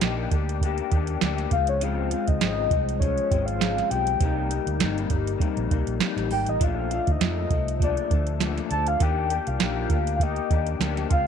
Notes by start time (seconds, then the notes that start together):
0.01 A#1 D#3 A#3 D4 G4, snare, closed hi-hat
0.31 D2 D4 G4, kick, closed hi-hat
0.35 A#3
0.49 closed hi-hat
0.61 A#3 D4 G4, kick, closed hi-hat
0.78 closed hi-hat
0.91 D#2 A#3 D4 G4, kick, closed hi-hat
1.07 closed hi-hat
1.21 D2 A#3 D4 G4, snare, closed hi-hat
1.38 snare, closed hi-hat
1.51 C#2 G#3 C4 F5, kick, closed hi-hat
1.55 F3
1.67 C#5, closed hi-hat
1.81 C#3 F3 G#3 C4 F5, closed hi-hat
2.11 F3 G#3 C4, closed hi-hat
2.28 C#2 D#5, kick, closed hi-hat
2.40 G#1 C#3 F3 G#3 C4, snare, closed hi-hat
2.70 C2 F3 G#3 C4, kick, closed hi-hat
2.89 closed hi-hat
3.00 F3 G#3 C#5, kick, closed hi-hat
3.18 closed hi-hat
3.30 G#1 F3 G#3 C4, kick, closed hi-hat
3.46 F5, closed hi-hat
3.59 C#3 F3 G#3 C4, snare, closed hi-hat
3.78 snare, closed hi-hat
3.89 B1 F3 G#3 C4 G5, closed hi-hat
4.07 closed hi-hat
4.20 C2 C3 G3 A#3 D#4, kick, closed hi-hat
4.49 G3 A#3 D#4, closed hi-hat
4.66 D2, closed hi-hat
4.80 G1 C3 G3 A#3 D#4, snare, closed hi-hat
4.98 closed hi-hat
5.09 G1 G3 A#3 D#4, kick, closed hi-hat
5.27 closed hi-hat
5.38 C3 G3 A#3 D#4, kick, closed hi-hat
5.57 A#1, closed hi-hat
5.69 C2 G3 A#3 D#4, kick, closed hi-hat
5.87 A#1, closed hi-hat
6.00 C3 G3 A#3 D#4, snare, closed hi-hat
6.16 A1, snare, closed hi-hat
6.30 G#1 G3 A#3 D#4 G5, open hi-hat
6.46 A1 D#5, closed hi-hat
6.60 A#1 A#2 F3 A3 D4, kick, closed hi-hat
6.64 F5
6.90 F3 A3 D4, closed hi-hat
7.07 D2, kick, closed hi-hat
7.11 D#5
7.20 F2 A#2 F3 A3, snare, closed hi-hat
7.50 C2 F3 A3, kick, closed hi-hat
7.68 closed hi-hat
7.80 A#2 F3 A3 D5, kick, closed hi-hat
7.84 D4
7.97 closed hi-hat
8.10 D2 F3 A3 D4, kick, closed hi-hat
8.27 closed hi-hat
8.40 A#2 F3 A3 D4, snare, closed hi-hat
8.57 snare, closed hi-hat
8.69 D2 F3 A3 D4 A5, closed hi-hat
8.87 F5, closed hi-hat
9.00 D#2 D#3 A#3 D4 G4 G5, kick, closed hi-hat
9.29 A#3 D4 G4, closed hi-hat
9.47 C2 F5, closed hi-hat
9.59 A#1 D#3 A#3 D4 G4, snare, closed hi-hat
9.90 D2 A#3 D4 G4, kick, closed hi-hat
10.07 closed hi-hat
10.16 F5, kick
10.21 A#3 G4 D#5, closed hi-hat
10.36 closed hi-hat
10.49 D#2 A#3 D4 G4, kick, closed hi-hat
10.67 closed hi-hat
10.80 D2 A#3 D4 G4, snare, closed hi-hat
10.97 snare, closed hi-hat
11.08 C#2 G#3 C4 F4 F5, kick, closed hi-hat